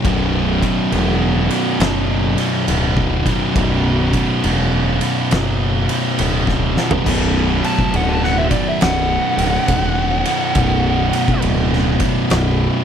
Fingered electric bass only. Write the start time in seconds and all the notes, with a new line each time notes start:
0.05 B0
0.92 E1
1.79 F#1
2.68 D1
3.56 B0
4.44 E1
5.32 F#1
6.19 D1
7.06 B0
7.94 D1
8.81 B0
9.37 D1
9.68 E1
10.56 B0
11.42 D1
12.31 B0